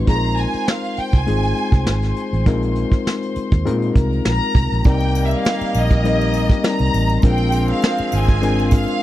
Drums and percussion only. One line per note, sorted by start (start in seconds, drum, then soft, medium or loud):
0.07 kick loud
0.07 closed hi-hat medium
0.24 closed hi-hat medium
0.37 closed hi-hat medium
0.54 closed hi-hat soft
0.68 snare loud
0.84 closed hi-hat soft
0.97 closed hi-hat medium
1.13 kick medium
1.13 closed hi-hat soft
1.27 closed hi-hat medium
1.43 closed hi-hat soft
1.57 closed hi-hat medium
1.72 kick medium
1.72 closed hi-hat soft
1.87 snare loud
2.02 snare soft
2.02 closed hi-hat medium
2.16 closed hi-hat medium
2.33 closed hi-hat medium
2.46 kick loud
2.46 closed hi-hat medium
2.63 closed hi-hat medium
2.76 closed hi-hat medium
2.92 kick medium
2.92 closed hi-hat soft
3.07 snare loud
3.22 closed hi-hat medium
3.36 closed hi-hat medium
3.51 kick medium
3.51 closed hi-hat soft
3.66 closed hi-hat medium
3.82 closed hi-hat medium
3.95 kick medium
3.95 closed hi-hat medium
4.12 closed hi-hat soft
4.25 snare loud
4.42 closed hi-hat medium
4.55 kick medium
4.55 closed hi-hat medium
4.72 closed hi-hat medium
4.84 kick loud
4.84 closed hi-hat medium
4.84 muted triangle medium
5.01 closed hi-hat medium
5.01 muted triangle soft
5.15 closed hi-hat medium
5.15 triangle medium
5.31 closed hi-hat soft
5.31 muted triangle medium
5.45 snare loud
5.45 muted triangle soft
5.62 closed hi-hat medium
5.62 muted triangle soft
5.75 open hi-hat soft
5.75 triangle medium
5.91 kick medium
5.91 closed hi-hat medium
5.91 muted triangle soft
6.05 closed hi-hat medium
6.05 muted triangle medium
6.21 closed hi-hat medium
6.21 muted triangle medium
6.34 closed hi-hat medium
6.34 triangle medium
6.50 kick medium
6.50 closed hi-hat medium
6.50 muted triangle soft
6.64 snare loud
6.64 muted triangle soft
6.79 closed hi-hat medium
6.79 muted triangle soft
6.93 closed hi-hat medium
6.93 triangle medium
7.10 closed hi-hat medium
7.10 muted triangle medium
7.22 kick loud
7.22 closed hi-hat medium
7.22 muted triangle medium
7.38 closed hi-hat medium
7.38 muted triangle medium
7.52 closed hi-hat medium
7.52 triangle medium
7.68 closed hi-hat soft
7.68 muted triangle medium
7.82 snare loud
7.82 muted triangle soft
7.99 closed hi-hat soft
7.99 muted triangle soft
8.12 closed hi-hat medium
8.12 triangle medium
8.28 kick medium
8.28 closed hi-hat soft
8.28 muted triangle soft
8.43 closed hi-hat loud
8.43 muted triangle medium
8.59 closed hi-hat medium
8.59 muted triangle medium
8.71 kick medium
8.71 closed hi-hat medium
8.71 triangle medium
8.88 closed hi-hat soft
8.88 muted triangle soft